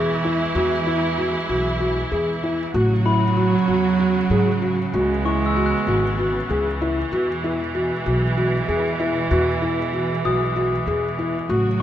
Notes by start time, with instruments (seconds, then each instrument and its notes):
Already playing: upright bass E2, string section E3 G#3 E4, cello E3
0.24 felt piano E4
0.55 upright bass E2, felt piano F#4
0.87 felt piano E4
1.18 felt piano F#4
1.49 upright bass B1, felt piano F#4
1.80 felt piano F#4
2.12 upright bass E2, felt piano G#4
2.43 felt piano E4
2.74 upright bass A1, string section C#3 F#3 F#4, cello F#3, felt piano F#4
3.05 felt piano E4, glockenspiel B5
3.37 felt piano F#4
3.68 upright bass E2, felt piano F#4
4.00 felt piano F#4
4.30 upright bass G#2, felt piano G#4
4.62 felt piano F#4
4.92 upright bass C#2, string section E3 B3, cello G#3, felt piano F#4
5.25 felt piano E4, glockenspiel C#6
5.46 glockenspiel E6
5.56 felt piano F#4
5.66 glockenspiel F#6
5.87 upright bass G#1, felt piano F#4
6.19 felt piano F#4
6.50 upright bass C#2, felt piano G#4
6.82 felt piano E4
7.11 upright bass E2, string section B2 G#3, cello E3, felt piano F#4
7.44 felt piano E4
7.75 felt piano F#4
8.06 upright bass B1, felt piano F#4
8.37 felt piano F#4
8.68 upright bass E2, felt piano G#4
9.00 felt piano E4
9.31 upright bass E2, felt piano F#4
9.62 felt piano E4
9.93 felt piano F#4
10.25 upright bass B1, felt piano F#4, glockenspiel D#6
10.56 felt piano F#4
10.87 upright bass E2, felt piano G#4
11.19 felt piano E4
11.49 upright bass A1, string section C#3 A3 F#4, cello F#3, felt piano F#4